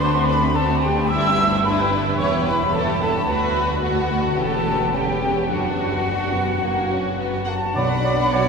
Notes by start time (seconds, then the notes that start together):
Already playing: D2
0.01 C4 D4 A4 C6
0.15 A3 C4 F#4
0.27 C4 D4 A4 B4 B5
0.41 A3 C4 F#4
0.54 C4 D4 A4 A5
0.67 A3 C4 F#4
0.82 C4 D4 G4 A4 G5
0.95 A3 C4 F#4
1.09 G1 G2 E4 E5 E6
1.13 D4
1.22 G4
1.27 B3 E4
1.37 D4 E4
1.41 E4
1.48 G4
1.55 B3 E4
1.62 E4 B4 B5
1.67 D4 E4
1.77 B3 E4 G4
1.92 D4 E4
2.05 B3 E4 G4
2.18 E1 E2 E4 B4 C#5 C#6
2.32 G4
2.36 B3 G4
2.46 E4 B4 B5
2.60 B3 G4
2.72 E4 A4 B4 A5
2.88 B3 G4
3.00 E4 A4 B4 A5
3.15 B3 G4
3.28 D2 B3 F#4 B4 B5
3.82 B3 F#4 F#5
4.37 E1 E2 B3 C#4 G4 A4 A5
4.93 B3 C#4 G4 G5
5.49 F#1 F#2 B3 D4 F#4 F#5
6.04 D4
6.33 B3
6.61 F#1 F#2 A#3 F#4
6.91 C#4
7.17 B3
7.45 A#3 F#5 A5
7.73 B1 B2 F#3 B3 D4 F#4 D5 F#5 B5
8.04 F#3 D5
8.30 F#3 D4 C#5 D5 F#5